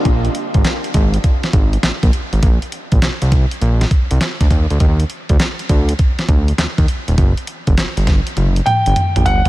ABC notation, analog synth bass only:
X:1
M:4/4
L:1/16
Q:"Swing 16ths" 1/4=101
K:Bbmix
V:1 name="Analog synth bass" clef=bass
B,,,2 z A,,, z2 A,,,2 z2 A,,,2 B,,, B,,, z A,,, | B,,, z2 B,,, C,, C,,2 z B,,,2 z C,, z D,, E,, D,, | E,,2 z D,, z2 D,,2 z2 D,,2 E,, E,, z E,,, | ^F,,, z2 F,,, G,,, G,,,2 z F,,,2 z G,,, z ^A,,, G,,, z |]